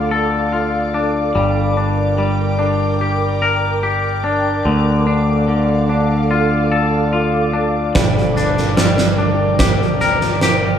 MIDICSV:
0, 0, Header, 1, 5, 480
1, 0, Start_track
1, 0, Key_signature, -2, "minor"
1, 0, Tempo, 824176
1, 791, Time_signature, 4, 2, 24, 8
1, 6283, End_track
2, 0, Start_track
2, 0, Title_t, "Ambient pad"
2, 0, Program_c, 0, 92
2, 0, Note_on_c, 0, 69, 63
2, 0, Note_on_c, 0, 74, 52
2, 0, Note_on_c, 0, 77, 56
2, 0, Note_on_c, 0, 86, 63
2, 772, Note_off_c, 0, 69, 0
2, 773, Note_off_c, 0, 77, 0
2, 774, Note_off_c, 0, 74, 0
2, 795, Note_on_c, 0, 70, 63
2, 796, Note_on_c, 0, 79, 54
2, 799, Note_on_c, 0, 74, 53
2, 2696, Note_off_c, 0, 70, 0
2, 2697, Note_off_c, 0, 79, 0
2, 2712, Note_on_c, 0, 77, 59
2, 2721, Note_on_c, 0, 69, 61
2, 4612, Note_off_c, 0, 77, 0
2, 4617, Note_off_c, 0, 69, 0
2, 4633, Note_on_c, 0, 79, 54
2, 4634, Note_on_c, 0, 70, 57
2, 6283, Note_off_c, 0, 70, 0
2, 6283, Note_off_c, 0, 74, 0
2, 6283, Note_off_c, 0, 79, 0
2, 6283, Note_off_c, 0, 86, 0
2, 6283, End_track
3, 0, Start_track
3, 0, Title_t, "Clean electric guitar"
3, 0, Program_c, 1, 27
3, 0, Note_on_c, 1, 50, 43
3, 0, Note_on_c, 1, 62, 44
3, 0, Note_on_c, 1, 65, 46
3, 66, Note_on_c, 1, 69, 52
3, 299, Note_off_c, 1, 65, 0
3, 306, Note_on_c, 1, 65, 45
3, 547, Note_off_c, 1, 62, 0
3, 549, Note_on_c, 1, 62, 51
3, 552, Note_off_c, 1, 50, 0
3, 787, Note_on_c, 1, 55, 52
3, 789, Note_off_c, 1, 65, 0
3, 790, Note_off_c, 1, 69, 0
3, 1030, Note_off_c, 1, 62, 0
3, 1032, Note_on_c, 1, 62, 41
3, 1264, Note_off_c, 1, 55, 0
3, 1271, Note_on_c, 1, 55, 49
3, 1505, Note_off_c, 1, 62, 0
3, 1507, Note_on_c, 1, 62, 49
3, 1754, Note_on_c, 1, 67, 50
3, 1991, Note_on_c, 1, 70, 53
3, 2224, Note_off_c, 1, 67, 0
3, 2231, Note_on_c, 1, 67, 46
3, 2466, Note_off_c, 1, 62, 0
3, 2469, Note_on_c, 1, 62, 49
3, 2473, Note_off_c, 1, 55, 0
3, 2710, Note_on_c, 1, 50, 48
3, 2713, Note_off_c, 1, 67, 0
3, 2713, Note_off_c, 1, 70, 0
3, 2949, Note_off_c, 1, 62, 0
3, 2951, Note_on_c, 1, 62, 46
3, 3183, Note_off_c, 1, 50, 0
3, 3190, Note_on_c, 1, 50, 44
3, 3430, Note_off_c, 1, 62, 0
3, 3433, Note_on_c, 1, 62, 46
3, 3673, Note_on_c, 1, 65, 51
3, 3912, Note_on_c, 1, 69, 47
3, 4143, Note_off_c, 1, 65, 0
3, 4150, Note_on_c, 1, 65, 46
3, 4386, Note_off_c, 1, 62, 0
3, 4388, Note_on_c, 1, 62, 49
3, 4391, Note_off_c, 1, 50, 0
3, 4629, Note_on_c, 1, 55, 51
3, 4631, Note_off_c, 1, 65, 0
3, 4631, Note_off_c, 1, 69, 0
3, 4871, Note_off_c, 1, 62, 0
3, 4873, Note_on_c, 1, 62, 43
3, 5099, Note_off_c, 1, 55, 0
3, 5106, Note_on_c, 1, 55, 51
3, 5345, Note_off_c, 1, 62, 0
3, 5348, Note_on_c, 1, 62, 48
3, 5586, Note_on_c, 1, 67, 54
3, 5830, Note_on_c, 1, 70, 53
3, 6066, Note_off_c, 1, 67, 0
3, 6073, Note_on_c, 1, 67, 52
3, 6283, Note_off_c, 1, 55, 0
3, 6283, Note_off_c, 1, 62, 0
3, 6283, Note_off_c, 1, 67, 0
3, 6283, Note_off_c, 1, 70, 0
3, 6283, End_track
4, 0, Start_track
4, 0, Title_t, "Picked electric bass"
4, 0, Program_c, 2, 34
4, 0, Note_on_c, 2, 38, 50
4, 766, Note_off_c, 2, 38, 0
4, 790, Note_on_c, 2, 31, 55
4, 2690, Note_off_c, 2, 31, 0
4, 2711, Note_on_c, 2, 38, 54
4, 4608, Note_off_c, 2, 38, 0
4, 4636, Note_on_c, 2, 31, 57
4, 6283, Note_off_c, 2, 31, 0
4, 6283, End_track
5, 0, Start_track
5, 0, Title_t, "Drums"
5, 4630, Note_on_c, 9, 38, 74
5, 4634, Note_on_c, 9, 36, 77
5, 4689, Note_off_c, 9, 38, 0
5, 4692, Note_off_c, 9, 36, 0
5, 4871, Note_on_c, 9, 38, 25
5, 4929, Note_off_c, 9, 38, 0
5, 4994, Note_on_c, 9, 38, 26
5, 5052, Note_off_c, 9, 38, 0
5, 5110, Note_on_c, 9, 38, 76
5, 5168, Note_off_c, 9, 38, 0
5, 5231, Note_on_c, 9, 38, 61
5, 5289, Note_off_c, 9, 38, 0
5, 5586, Note_on_c, 9, 38, 75
5, 5591, Note_on_c, 9, 36, 79
5, 5644, Note_off_c, 9, 38, 0
5, 5649, Note_off_c, 9, 36, 0
5, 5826, Note_on_c, 9, 38, 26
5, 5884, Note_off_c, 9, 38, 0
5, 5947, Note_on_c, 9, 38, 24
5, 6005, Note_off_c, 9, 38, 0
5, 6065, Note_on_c, 9, 38, 66
5, 6123, Note_off_c, 9, 38, 0
5, 6283, End_track
0, 0, End_of_file